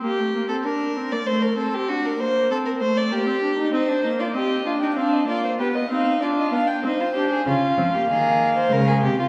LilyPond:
<<
  \new Staff \with { instrumentName = "Violin" } { \time 3/4 \key c \minor \tempo 4 = 96 r2. | r2. | c''8. d''16 ees''8. g''16 f''16 ees''16 d''16 c''16 | b'16 ees''16 f''8 d''16 ees''16 f''16 g''16 c''4 |
\key des \lydian f''2. | }
  \new Staff \with { instrumentName = "Violin" } { \time 3/4 \key c \minor g'8. a'16 bes'8. d''16 c''16 bes'16 a'16 g'16 | fis'16 bes'16 c''8 a'16 bes'16 c''16 d''16 g'4 | ees'16 d'16 ees'16 f'16 g'8 f'16 ees'16 d'8 f'8 | g'8 ees'8 f'8 d'8 ees'16 f'16 g'16 aes'16 |
\key des \lydian f'8. g'16 aes'8. c''16 bes'16 aes'16 g'16 f'16 | }
  \new Staff \with { instrumentName = "Viola" } { \time 3/4 \key c \minor bes16 a16 bes16 c'16 d'8 c'16 bes16 a8 c'8 | d'8 bes8 c'8 a8 bes16 c'16 d'16 ees'16 | c'8 bes8 c'8 d'8 c'8 bes8 | b8 c'8 d'8 b8 c'8 d'8 |
\key des \lydian des'8 c'16 bes4~ bes16 aes4 | }
  \new Staff \with { instrumentName = "Cello" } { \clef bass \time 3/4 \key c \minor r2. | r2. | r2. | r2. |
\key des \lydian des8 f8 ees4 des8 c8 | }
>>